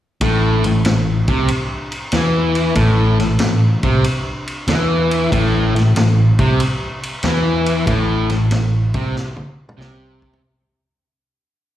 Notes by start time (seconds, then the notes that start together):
0.21 A1 A2, kick, ride
0.64 A1 A2, ride
0.85 A1 A2, snare, ride
1.28 C2 C3, kick, ride
1.48 ride
1.92 ride
2.12 E2 E3, snare, ride
2.55 ride
2.75 A1 A2, kick, ride
3.19 A1 A2, snare, ride
3.39 A1 A2, snare, ride
3.83 C2 C3, kick, ride
4.04 ride
4.47 ride
4.68 E2 E3, snare, ride
5.11 ride
5.32 A1 A2, kick, ride
5.75 A1 A2, snare, ride
5.95 A1 A2, snare, ride
6.39 C2 C3, kick, ride
6.60 ride
7.03 ride
7.23 E2 E3, snare, ride
7.66 ride
7.87 A1 A2, kick, ride
8.30 A1 A2, snare, ride
8.51 A1 A2, snare, ride
8.94 C2 C3, kick, ride
9.16 snare
9.36 high tom
9.69 mid tom
9.78 C2 C3, snare
10.22 kick
10.33 floor tom